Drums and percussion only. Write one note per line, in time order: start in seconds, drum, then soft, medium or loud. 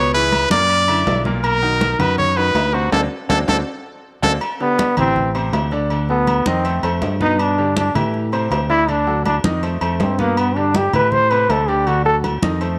0.14 high conga soft
0.32 high conga medium
0.32 low timbale medium
0.32 low agogo loud
0.51 high conga loud
0.70 high conga soft
0.70 low agogo medium
0.88 high conga soft
0.88 low agogo loud
1.07 high conga medium
1.07 low timbale medium
1.07 low agogo medium
1.25 high conga medium
1.44 high conga soft
1.44 low agogo loud
1.63 high conga soft
1.81 high conga loud
1.81 low timbale medium
1.81 low agogo medium
2.00 high conga soft
2.00 low conga medium
2.00 low agogo loud
2.18 high conga soft
2.18 low conga medium
2.37 high conga soft
2.37 low agogo medium
2.55 high conga soft
2.55 low timbale medium
2.55 low agogo loud
2.74 high conga soft
2.92 high conga medium
2.92 high timbale loud
3.30 high conga loud
3.30 high timbale loud
3.48 high conga loud
3.48 high timbale loud
4.23 high conga loud
4.23 high timbale loud
4.41 high conga soft
4.41 low agogo loud
4.60 high conga soft
4.79 high conga loud
4.79 low timbale medium
4.79 low agogo medium
4.97 high conga soft
4.97 low conga medium
4.97 low agogo loud
5.16 high conga soft
5.16 low conga medium
5.35 high conga soft
5.35 low agogo medium
5.53 high conga soft
5.53 low timbale medium
5.53 low agogo loud
5.71 high conga soft
5.90 high conga soft
5.90 low agogo medium
6.09 high conga soft
6.27 high conga medium
6.27 low timbale medium
6.27 low agogo loud
6.46 high conga loud
6.65 high conga soft
6.65 low agogo medium
6.83 high conga soft
6.83 low agogo loud
7.02 high conga medium
7.02 low timbale medium
7.02 low agogo medium
7.21 high conga medium
7.39 high conga soft
7.39 low agogo loud
7.58 high conga soft
7.77 high conga loud
7.77 low timbale medium
7.77 low agogo medium
7.95 high conga soft
7.95 low conga medium
7.95 low agogo loud
8.14 high conga soft
8.32 high conga soft
8.32 low agogo medium
8.51 high conga soft
8.51 low timbale medium
8.51 low agogo loud
8.70 high conga soft
8.88 high conga soft
8.88 low agogo medium
9.07 high conga soft
9.26 high conga medium
9.26 low timbale medium
9.26 low agogo loud
9.44 high conga loud
9.63 high conga soft
9.63 low agogo medium
9.81 high conga soft
9.81 low agogo loud
10.00 high conga medium
10.00 low timbale medium
10.00 low agogo medium
10.19 high conga medium
10.37 high conga soft
10.37 low agogo loud
10.56 high conga soft
10.75 high conga medium
10.75 low timbale medium
10.75 low agogo medium
10.93 high conga soft
10.93 low conga medium
10.93 low agogo loud
11.12 high conga soft
11.12 low conga medium
11.31 high conga soft
11.31 low agogo medium
11.50 high conga soft
11.50 low timbale medium
11.50 low agogo loud
11.68 high conga soft
11.87 high conga soft
11.87 low agogo medium
12.05 high conga soft
12.24 high conga medium
12.24 low timbale medium
12.24 low agogo loud
12.43 high conga loud
12.61 high conga soft
12.61 low agogo medium